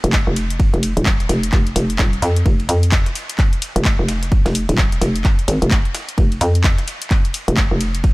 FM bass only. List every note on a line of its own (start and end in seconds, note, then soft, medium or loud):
0.04 0.25 F1 loud
0.27 0.71 F1 loud
0.74 0.95 F1 loud
0.97 1.28 D#1 loud
1.29 1.51 F1 loud
1.53 1.74 F1 medium
1.76 1.98 F1 loud
1.99 2.21 D#1 loud
2.22 2.44 F2 loud
2.46 2.67 F1 loud
2.69 3.04 F2 medium
3.76 3.97 F1 loud
3.99 4.44 F1 loud
4.46 4.67 F1 loud
4.69 5.00 D#1 loud
5.01 5.23 F1 loud
5.48 5.60 G#1 loud
5.62 5.83 F1 loud
6.18 6.40 F1 medium
6.41 6.76 F2 medium
7.48 7.69 F1 loud
7.71 8.14 F1 loud